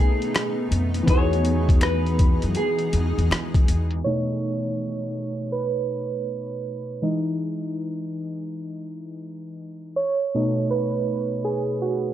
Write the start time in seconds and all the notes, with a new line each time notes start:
Already playing: B2 A3 B3 C#4 D#4 G#4 B4 D#5
0.22 closed hi-hat
0.35 finger snap, cross-stick, closed hi-hat
0.71 F2, closed hi-hat
0.94 closed hi-hat
1.03 E3 B3
1.08 E2 E3 D#4 G#4 C#5, kick, closed hi-hat
1.13 F#4 G#4
1.33 closed hi-hat
1.45 closed hi-hat
1.69 kick, closed hi-hat
1.81 B4, finger snap, cross-stick, closed hi-hat
2.06 closed hi-hat
2.19 kick, closed hi-hat
2.42 F#2, closed hi-hat
2.55 G#4, closed hi-hat
2.79 closed hi-hat
2.93 E2, closed hi-hat
3.18 E2, closed hi-hat
3.30 E3, finger snap, cross-stick, closed hi-hat
3.54 kick, closed hi-hat
3.68 E2, closed hi-hat
3.91 closed hi-hat
4.04 B2 A3 D#4 C#5
5.52 B4
7.02 E3 G#3 D#4
9.96 C#5
10.34 B2 A3 D#4
10.71 B4
11.45 G#4
11.82 F#4